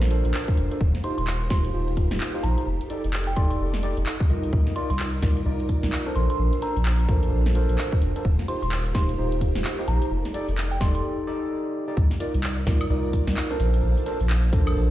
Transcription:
Already playing: sub bass A#1, string machine D4 F4 C5 C6
0.02 snare, closed hi-hat
0.11 tine electric piano D4 A4 A#4 C5, closed hi-hat
0.25 sub bass A#1, closed hi-hat
0.34 clap
0.48 kick
0.57 sub bass F1, closed hi-hat
0.71 tine electric piano D4 A4 A#4 C5, closed hi-hat
0.81 sub bass D#1, string machine G4 A#4, kick
0.95 snare, closed hi-hat
1.04 tine electric piano D#4 F4 G4 C5, synth bell C6, closed hi-hat
1.18 sub bass D#1, synth bell C6, closed hi-hat
1.27 clap
1.41 closed hi-hat
1.50 sub bass D#1, tine electric piano D#4 F4 G4 C5, synth bell C6, kick, snare, closed hi-hat
1.64 closed hi-hat
1.74 sub bass D#1, tine electric piano D#4 F4 G4 C5
1.88 closed hi-hat
1.97 kick, closed hi-hat
2.11 sub bass D#1, snare, closed hi-hat
2.20 clap
2.34 tine electric piano D#4 F4 G4 C5
2.43 sub bass A#1, synth bell A#5, closed hi-hat
2.58 closed hi-hat
2.67 sub bass F1, string machine D#4 A4 D6
2.81 closed hi-hat
2.90 tine electric piano D#4 G4 A4 D5, closed hi-hat
3.04 sub bass F1, closed hi-hat
3.13 clap
3.27 synth bell G5, closed hi-hat
3.36 sub bass F1, tine electric piano D#4 G4 A4 D5, synth bell C6, kick, closed hi-hat
3.50 synth bell C6, closed hi-hat
3.60 sub bass F1
3.74 snare, closed hi-hat
3.83 tine electric piano D#4 G4 A4 D5, closed hi-hat
3.97 sub bass F1, closed hi-hat
4.06 clap
4.20 kick
4.29 sub bass C2, tine electric piano D#4 F4 A#4 D#5, closed hi-hat
4.43 closed hi-hat
4.53 sub bass C2, string machine F4 A#4, kick
4.67 snare, closed hi-hat
4.76 tine electric piano D#4 F4 A#4 D5, synth bell C6, closed hi-hat
4.90 sub bass C2, synth bell C6, closed hi-hat
4.99 clap
5.13 closed hi-hat
5.22 sub bass C2, tine electric piano D#4 F4 A#4 D5, kick, snare, closed hi-hat
5.37 closed hi-hat
5.46 sub bass C2, tine electric piano D#4 F4 A#4 D5
5.60 closed hi-hat
5.69 kick, closed hi-hat
5.83 sub bass C2, snare, closed hi-hat
5.92 clap
6.06 tine electric piano D4 A4 A#4 C5
6.15 sub bass A#1, string machine D4 C5 C6, synth bell C6, closed hi-hat
6.30 synth bell C6, closed hi-hat
6.39 sub bass A#1
6.53 closed hi-hat
6.62 tine electric piano D4 A4 A#4 C5, synth bell A#5, closed hi-hat
6.76 sub bass A#1, closed hi-hat
6.85 clap
6.99 closed hi-hat
7.09 sub bass A#1, tine electric piano D4 A4 A#4 C5, kick, closed hi-hat
7.23 closed hi-hat
7.32 sub bass A#1
7.46 snare, closed hi-hat
7.55 tine electric piano D4 A4 A#4 C5, closed hi-hat
7.69 sub bass A#1, closed hi-hat
7.78 clap
7.92 kick
8.02 sub bass F1, closed hi-hat
8.16 tine electric piano D4 A4 A#4 C5, closed hi-hat
8.25 sub bass D#1, string machine G4 A#4, kick
8.39 snare, closed hi-hat
8.48 tine electric piano D#4 F4 G4 C5, synth bell C6, closed hi-hat
8.62 sub bass D#1, synth bell C6, closed hi-hat
8.72 clap
8.86 closed hi-hat
8.95 sub bass D#1, tine electric piano D#4 F4 G4 C5, synth bell C6, kick, snare, closed hi-hat
9.09 closed hi-hat
9.18 sub bass D#1, tine electric piano D#4 F4 G4 C5
9.32 closed hi-hat
9.41 kick, closed hi-hat
9.55 sub bass D#1, snare, closed hi-hat
9.64 clap
9.79 tine electric piano D#4 F4 G4 C5
9.88 sub bass A#1, synth bell A#5, closed hi-hat
10.02 closed hi-hat
10.11 sub bass F1, string machine D#4 A4 D5
10.25 snare, closed hi-hat
10.34 tine electric piano D#4 G4 A4 D5, closed hi-hat
10.48 sub bass F1, closed hi-hat
10.58 clap
10.71 synth bell G5, closed hi-hat
10.81 sub bass F1, tine electric piano D#4 G4 A4 D5, synth bell C6, kick, snare, closed hi-hat
10.95 synth bell C6, closed hi-hat
11.27 tine electric piano D#4 G4 A4 D5
11.88 tine electric piano D#4 G4 A4 D5
11.97 sub bass C2, string machine D#4 F4 A#4 D5, kick, shaker
12.11 snare, closed hi-hat, shaker
12.20 tine electric piano D#4 F4 A#4 D5, closed hi-hat, shaker
12.34 sub bass C2, closed hi-hat, shaker
12.43 clap, shaker
12.58 closed hi-hat, shaker
12.67 sub bass C2, tine electric piano D#4 F4 A#4 D5, kick, snare, closed hi-hat, shaker
12.81 closed hi-hat, high woodblock, shaker
12.90 sub bass C2, tine electric piano D#4 F4 A#4 D5, shaker
13.04 shaker
13.13 kick, closed hi-hat, shaker
13.27 sub bass C2, snare, closed hi-hat, shaker
13.37 clap, shaker
13.51 tine electric piano D4 A4 A#4 C5, closed hi-hat, shaker
13.60 sub bass A#1, string machine D4 C5 A5, closed hi-hat, shaker
13.74 closed hi-hat, shaker
13.83 sub bass A#1, shaker
13.97 closed hi-hat, shaker
14.06 tine electric piano D4 A4 A#4 C5, closed hi-hat, shaker
14.20 sub bass A#1, closed hi-hat, shaker
14.30 clap, shaker
14.44 closed hi-hat, shaker
14.53 sub bass A#1, tine electric piano D4 A4 A#4 C5, kick, closed hi-hat, shaker
14.67 closed hi-hat, high woodblock, shaker
14.76 sub bass A#1, shaker

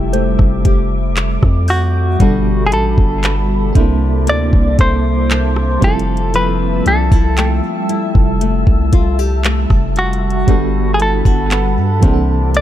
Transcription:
Already playing: 808-style bass F1, nylon-string guitar F3 A3 E4, fm electric piano G3 C4 E4 F4 A4, ambient pad G3 E5 A5 D6, clean electric guitar G4
0.13 nylon-string guitar A3, synth bell C5, closed hi-hat
0.39 808-style bass F1, kick, cross-stick
0.65 nylon-string guitar G4, kick, closed hi-hat
1.17 nylon-string guitar A3, clap, closed hi-hat
1.43 808-style bass F2, kick, cross-stick
1.68 clean electric guitar F#4, synth bell G6, open hi-hat
2.19 808-style bass G1, fm electric piano B2 G3 D4 F#4 A4, nylon-string guitar G3, ambient pad G3 F#4 B5, kick, closed hi-hat
2.67 clean electric guitar G#4
2.72 808-style bass A1, nylon-string guitar F#4, clean electric guitar A4, synth bell B5, closed hi-hat
2.98 808-style bass G1, kick
3.24 nylon-string guitar B3, synth bell A5, clap, closed hi-hat
3.73 808-style bass C2, nylon-string guitar C3, ambient pad A#3 E5 A5 D6, fm electric piano C4 D4 A4, kick, closed hi-hat
3.78 fm electric piano A#3 E4
4.27 808-style bass D2, nylon-string guitar A#3, clean electric guitar D5, closed hi-hat
4.53 808-style bass C2, kick
4.79 808-style bass C2, nylon-string guitar A4, clean electric guitar C5, kick, closed hi-hat
5.31 nylon-string guitar A#3, clap, closed hi-hat
5.56 cross-stick
5.80 808-style bass F1, nylon-string guitar F3, fm electric piano G3 C4 E4, ambient pad G3 E5 A5 E6, kick, closed hi-hat
5.84 fm electric piano F4 A4, clean electric guitar A4
5.99 closed hi-hat
6.17 closed hi-hat
6.34 nylon-string guitar F3, clean electric guitar B4, closed hi-hat
6.86 808-style bass C2, nylon-string guitar D4, clean electric guitar A4, closed hi-hat
7.12 808-style bass C2, nylon-string guitar E4, kick
7.37 nylon-string guitar A3, synth bell G5, clap, closed hi-hat
7.89 nylon-string guitar E4, closed hi-hat
8.15 808-style bass F1, kick
8.41 nylon-string guitar A3, closed hi-hat
8.67 808-style bass C2, kick
8.93 nylon-string guitar F4, kick, closed hi-hat
9.19 nylon-string guitar G4
9.44 nylon-string guitar A3, clap, closed hi-hat
9.70 808-style bass F1, kick, cross-stick
9.96 nylon-string guitar F4, clean electric guitar F#4, closed hi-hat
10.13 closed hi-hat
10.30 closed hi-hat
10.47 808-style bass G1, fm electric piano G3 B3 D4 F#4 A4, nylon-string guitar G3, ambient pad F#5 B5, kick, closed hi-hat
10.94 clean electric guitar G#4
11.00 nylon-string guitar E4, clean electric guitar A4, closed hi-hat
11.25 808-style bass G1, nylon-string guitar F#4, kick
11.51 nylon-string guitar B3, synth bell F#5, clap, closed hi-hat
11.77 808-style bass G2
12.00 808-style bass C2, nylon-string guitar C3, fm electric piano E3 A#3 C4, ambient pad A#3 E5 D6, kick, closed hi-hat
12.05 fm electric piano D4 G#4
12.13 fm electric piano A4
12.54 nylon-string guitar A#3, clean electric guitar D5, closed hi-hat

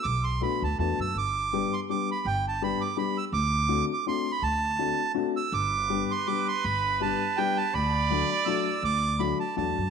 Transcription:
0.03 upright bass B1, accordion D6
0.24 accordion C6
0.41 upright piano A3 B3 D4 F#4, accordion B5
0.62 upright bass D2, accordion A5
0.79 upright bass E2, upright piano A3 B3 D4 F#4, accordion A5
0.99 upright bass F#2, accordion E6
1.15 upright bass G1, accordion D6
1.53 upright piano G3 B3 D4 G4
1.73 accordion C6
1.89 upright piano G3 B3 D4 G4, accordion D6
2.12 accordion B5
2.25 upright bass G1, accordion G5
2.48 accordion A5
2.62 upright piano G3 B3 D4 G4, accordion B5
2.81 accordion D6
2.97 upright piano G3 B3 D4 G4, accordion B5
3.18 accordion E6
3.33 upright bass D2, accordion D6
3.68 upright piano A3 C4 D4 F#4
3.93 accordion D6
4.06 upright piano A3 C4 D4 F#4, accordion C6
4.32 accordion B5
4.42 upright bass D2, accordion A5
4.79 upright piano A3 C4 D4 F#4
5.14 upright piano A3 C4 D4 F#4
5.37 accordion E6
5.52 upright bass G1, muted trumpet B4, accordion D6
5.90 upright piano G3 B3 D4 G4
6.11 accordion C6
6.27 upright piano G3 B3 D4 G4, accordion D6
6.48 accordion C6
6.64 upright bass G1, accordion B5
7.01 upright piano G3 B3 D4 G4, accordion A5
7.37 upright piano G3 B3 D4 G4, accordion G5
7.57 accordion A5
7.74 upright bass D2, muted trumpet D5, accordion B5
8.10 upright piano F#3 A3 D4 F#4
8.31 accordion B5
8.45 upright piano F#3 A3 D4 F#4, accordion E6
8.82 upright bass D2, accordion D6
9.19 upright piano F#3 A3 D4 F#4, accordion B5
9.40 accordion A5
9.56 upright bass E2, upright piano F#3 A3 D4 F#4, accordion A5
9.78 upright bass F#2

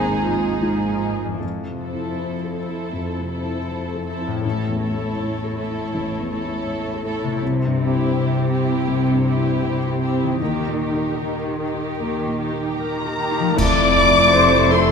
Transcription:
Already playing: double bass section G#1, felt piano D#2 G#2 G#3 D#4 F4, cello section G#2, viola section G#3, clarinet C4, violin section D#4 G#4 C5
0.22 viola section F3
0.61 viola section F3, felt piano G#3 D#4 F4
1.24 harp F2
1.29 harp C4
1.34 harp E4
1.38 felt piano F2, harp A4
1.42 cello section F2
1.67 felt piano C3
1.80 viola section E4, violin section A4 C5
1.93 felt piano E4
2.19 cello section F2, felt piano C5
2.44 felt piano A4
2.55 viola section E4, violin section A4 C5
2.68 felt piano E4
2.93 felt piano F2, cello section F2
3.18 felt piano C3
3.30 viola section E4, violin section A4 C5
3.43 felt piano E4
3.69 cello section F2, felt piano C5
3.94 felt piano A4
4.06 viola section E4, violin section A4 C5
4.19 felt piano E4
4.27 harp A2
4.31 harp C#4
4.36 harp E4
4.41 cello section A2, viola section E4, harp A4, violin section A4 C#5
4.45 felt piano A1
4.69 felt piano E2
4.80 viola section E4, violin section A4 C#5
4.95 felt piano E4
5.20 cello section A2, felt piano C#5
5.44 felt piano A4
5.56 viola section E4, violin section A4 C#5
5.70 felt piano E4
5.94 felt piano A1, cello section A2
6.20 felt piano E2
6.30 viola section E4, violin section A4 C#5
6.44 felt piano E4
6.68 cello section A2, felt piano C#5
6.94 felt piano A4
7.04 viola section E4, violin section A4 C#5
7.19 felt piano E4
7.24 harp C3
7.28 harp C4
7.32 harp E4
7.37 harp G4
7.42 felt piano C2, cello section C3
7.66 felt piano G2
7.78 viola section E4, violin section G4 C5
7.91 felt piano E4
8.15 cello section C3, felt piano C5
8.39 felt piano G4
8.50 viola section E4, violin section G4 C5
8.63 felt piano E4
8.87 felt piano C2, cello section C3
9.12 felt piano G2
9.24 viola section E4, violin section G4 C5
9.37 felt piano E4
9.63 cello section C3, felt piano C5
9.88 felt piano G4
10.01 viola section E4, violin section G4 C5
10.13 felt piano E4
10.23 harp D#3
10.28 harp A#3
10.32 harp D#4
10.37 cello section D#3, viola section D#4, harp G4, violin section A#4
10.41 felt piano D#2, violin section G4
10.67 felt piano A#2
10.80 viola section D#4, violin section G4 A#4
10.94 felt piano D#4
11.19 cello section D#3, felt piano A#4
11.48 felt piano G4
11.59 viola section D#4, violin section G4 A#4
11.74 felt piano D#4
11.99 felt piano D#2, cello section D#3
12.26 felt piano A#2
12.39 viola section D#4, violin section G4 A#4
12.53 felt piano D#4
12.78 cello section D#3, felt piano A#4, clarinet A#4, violin section A#5
13.05 felt piano G4
13.17 viola section D#4, violin section G4 A#4
13.31 felt piano D#4
13.40 harp F3
13.44 harp A3
13.53 french horn section E4, harp A4
13.57 double bass section F1, felt piano F2, cello section F2, violin section A3 E4 D6, french horn section A3, viola section D5, clarinet D5, concert bass drum, crash
14.34 felt piano C3, viola section C5
14.72 viola section A4, clarinet C5, violin section C6

